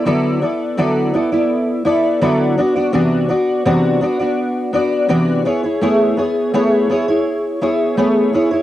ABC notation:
X:1
M:4/4
L:1/16
Q:1/4=83
K:Dlyd
V:1 name="Steel-string acoustic guitar"
[D,F,B,EAd]2 [B,EAd]2 [D,F,B,EAd]2 [B,EAd] [B,EAd]3 [B,EAd]2 [D,F,B,EAd]2 [B,DFd] [B,DFd] | [=C,E,B,DFd]2 [B,DFd]2 [C,E,B,DFd]2 [B,DFd] [B,DFd]3 [B,DFd]2 [C,E,B,DFd]2 [B,EG^c] [EGc] | [A,B,EGc]2 [B,EGc]2 [A,B,EGc]2 [B,EGc] [EGc]3 [B,EGc]2 [A,B,EGc]2 [B,EGc] [EGc] |]